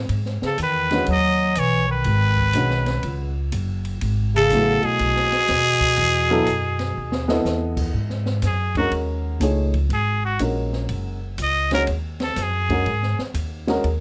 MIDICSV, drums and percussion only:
0, 0, Header, 1, 2, 480
1, 0, Start_track
1, 0, Tempo, 490998
1, 95, Time_signature, 4, 2, 24, 8
1, 13690, End_track
2, 0, Start_track
2, 0, Title_t, "Drums"
2, 88, Note_on_c, 9, 51, 59
2, 186, Note_off_c, 9, 51, 0
2, 249, Note_on_c, 9, 38, 28
2, 347, Note_off_c, 9, 38, 0
2, 410, Note_on_c, 9, 38, 42
2, 508, Note_off_c, 9, 38, 0
2, 565, Note_on_c, 9, 44, 50
2, 565, Note_on_c, 9, 51, 56
2, 663, Note_off_c, 9, 44, 0
2, 663, Note_off_c, 9, 51, 0
2, 885, Note_on_c, 9, 51, 40
2, 888, Note_on_c, 9, 38, 40
2, 983, Note_off_c, 9, 51, 0
2, 986, Note_off_c, 9, 38, 0
2, 1040, Note_on_c, 9, 51, 53
2, 1138, Note_off_c, 9, 51, 0
2, 1518, Note_on_c, 9, 44, 53
2, 1518, Note_on_c, 9, 51, 61
2, 1616, Note_off_c, 9, 44, 0
2, 1616, Note_off_c, 9, 51, 0
2, 1996, Note_on_c, 9, 51, 60
2, 2094, Note_off_c, 9, 51, 0
2, 2320, Note_on_c, 9, 36, 49
2, 2417, Note_off_c, 9, 36, 0
2, 2475, Note_on_c, 9, 44, 46
2, 2475, Note_on_c, 9, 51, 62
2, 2572, Note_off_c, 9, 44, 0
2, 2572, Note_off_c, 9, 51, 0
2, 2641, Note_on_c, 9, 38, 25
2, 2739, Note_off_c, 9, 38, 0
2, 2797, Note_on_c, 9, 51, 42
2, 2800, Note_on_c, 9, 38, 37
2, 2895, Note_off_c, 9, 51, 0
2, 2898, Note_off_c, 9, 38, 0
2, 2960, Note_on_c, 9, 51, 53
2, 3057, Note_off_c, 9, 51, 0
2, 3441, Note_on_c, 9, 44, 44
2, 3441, Note_on_c, 9, 51, 65
2, 3539, Note_off_c, 9, 44, 0
2, 3539, Note_off_c, 9, 51, 0
2, 3761, Note_on_c, 9, 51, 48
2, 3859, Note_off_c, 9, 51, 0
2, 3921, Note_on_c, 9, 51, 62
2, 4019, Note_off_c, 9, 51, 0
2, 4399, Note_on_c, 9, 44, 56
2, 4399, Note_on_c, 9, 51, 62
2, 4497, Note_off_c, 9, 44, 0
2, 4497, Note_off_c, 9, 51, 0
2, 4719, Note_on_c, 9, 51, 43
2, 4817, Note_off_c, 9, 51, 0
2, 4880, Note_on_c, 9, 51, 56
2, 4978, Note_off_c, 9, 51, 0
2, 5041, Note_on_c, 9, 38, 29
2, 5139, Note_off_c, 9, 38, 0
2, 5202, Note_on_c, 9, 51, 43
2, 5204, Note_on_c, 9, 38, 39
2, 5299, Note_off_c, 9, 51, 0
2, 5302, Note_off_c, 9, 38, 0
2, 5358, Note_on_c, 9, 44, 45
2, 5358, Note_on_c, 9, 51, 65
2, 5361, Note_on_c, 9, 38, 38
2, 5455, Note_off_c, 9, 44, 0
2, 5455, Note_off_c, 9, 51, 0
2, 5458, Note_off_c, 9, 38, 0
2, 5678, Note_on_c, 9, 36, 56
2, 5678, Note_on_c, 9, 51, 50
2, 5776, Note_off_c, 9, 36, 0
2, 5776, Note_off_c, 9, 51, 0
2, 5834, Note_on_c, 9, 51, 61
2, 5931, Note_off_c, 9, 51, 0
2, 6319, Note_on_c, 9, 44, 52
2, 6319, Note_on_c, 9, 51, 61
2, 6417, Note_off_c, 9, 44, 0
2, 6417, Note_off_c, 9, 51, 0
2, 6638, Note_on_c, 9, 51, 41
2, 6640, Note_on_c, 9, 38, 33
2, 6735, Note_off_c, 9, 51, 0
2, 6738, Note_off_c, 9, 38, 0
2, 6960, Note_on_c, 9, 38, 56
2, 7058, Note_off_c, 9, 38, 0
2, 7123, Note_on_c, 9, 38, 74
2, 7221, Note_off_c, 9, 38, 0
2, 7283, Note_on_c, 9, 44, 49
2, 7286, Note_on_c, 9, 38, 53
2, 7381, Note_off_c, 9, 44, 0
2, 7384, Note_off_c, 9, 38, 0
2, 7595, Note_on_c, 9, 36, 77
2, 7596, Note_on_c, 9, 49, 70
2, 7693, Note_off_c, 9, 36, 0
2, 7694, Note_off_c, 9, 49, 0
2, 7916, Note_on_c, 9, 38, 28
2, 8014, Note_off_c, 9, 38, 0
2, 8072, Note_on_c, 9, 38, 39
2, 8169, Note_off_c, 9, 38, 0
2, 8231, Note_on_c, 9, 44, 50
2, 8231, Note_on_c, 9, 51, 53
2, 8234, Note_on_c, 9, 38, 31
2, 8329, Note_off_c, 9, 44, 0
2, 8329, Note_off_c, 9, 51, 0
2, 8332, Note_off_c, 9, 38, 0
2, 8555, Note_on_c, 9, 36, 50
2, 8555, Note_on_c, 9, 51, 42
2, 8653, Note_off_c, 9, 36, 0
2, 8653, Note_off_c, 9, 51, 0
2, 8715, Note_on_c, 9, 51, 56
2, 8813, Note_off_c, 9, 51, 0
2, 9195, Note_on_c, 9, 44, 52
2, 9195, Note_on_c, 9, 51, 61
2, 9293, Note_off_c, 9, 44, 0
2, 9293, Note_off_c, 9, 51, 0
2, 9518, Note_on_c, 9, 51, 42
2, 9519, Note_on_c, 9, 36, 51
2, 9616, Note_off_c, 9, 51, 0
2, 9617, Note_off_c, 9, 36, 0
2, 9679, Note_on_c, 9, 51, 50
2, 9776, Note_off_c, 9, 51, 0
2, 10159, Note_on_c, 9, 44, 49
2, 10159, Note_on_c, 9, 51, 61
2, 10257, Note_off_c, 9, 44, 0
2, 10257, Note_off_c, 9, 51, 0
2, 10488, Note_on_c, 9, 38, 32
2, 10586, Note_off_c, 9, 38, 0
2, 10643, Note_on_c, 9, 51, 53
2, 10741, Note_off_c, 9, 51, 0
2, 11124, Note_on_c, 9, 44, 63
2, 11124, Note_on_c, 9, 51, 64
2, 11222, Note_off_c, 9, 44, 0
2, 11222, Note_off_c, 9, 51, 0
2, 11446, Note_on_c, 9, 51, 46
2, 11449, Note_on_c, 9, 38, 41
2, 11544, Note_off_c, 9, 51, 0
2, 11547, Note_off_c, 9, 38, 0
2, 11604, Note_on_c, 9, 51, 61
2, 11702, Note_off_c, 9, 51, 0
2, 11925, Note_on_c, 9, 51, 41
2, 11928, Note_on_c, 9, 38, 51
2, 12023, Note_off_c, 9, 51, 0
2, 12026, Note_off_c, 9, 38, 0
2, 12085, Note_on_c, 9, 44, 50
2, 12085, Note_on_c, 9, 51, 55
2, 12088, Note_on_c, 9, 38, 37
2, 12183, Note_off_c, 9, 44, 0
2, 12183, Note_off_c, 9, 51, 0
2, 12186, Note_off_c, 9, 38, 0
2, 12409, Note_on_c, 9, 36, 54
2, 12411, Note_on_c, 9, 51, 42
2, 12507, Note_off_c, 9, 36, 0
2, 12509, Note_off_c, 9, 51, 0
2, 12571, Note_on_c, 9, 51, 47
2, 12669, Note_off_c, 9, 51, 0
2, 12735, Note_on_c, 9, 38, 26
2, 12833, Note_off_c, 9, 38, 0
2, 12891, Note_on_c, 9, 38, 41
2, 12989, Note_off_c, 9, 38, 0
2, 13045, Note_on_c, 9, 44, 50
2, 13045, Note_on_c, 9, 51, 64
2, 13143, Note_off_c, 9, 44, 0
2, 13143, Note_off_c, 9, 51, 0
2, 13373, Note_on_c, 9, 51, 42
2, 13376, Note_on_c, 9, 38, 44
2, 13471, Note_off_c, 9, 51, 0
2, 13474, Note_off_c, 9, 38, 0
2, 13529, Note_on_c, 9, 51, 53
2, 13627, Note_off_c, 9, 51, 0
2, 13690, End_track
0, 0, End_of_file